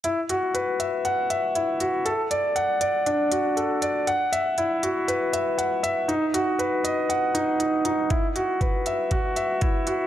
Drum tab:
HH |xxxxxxxx|xxxxxxxx|xxxxxxxx|xxxxxxxx|
BD |--------|--------|--------|--------|

HH |xxxxxxxx|
BD |o-o-o-o-|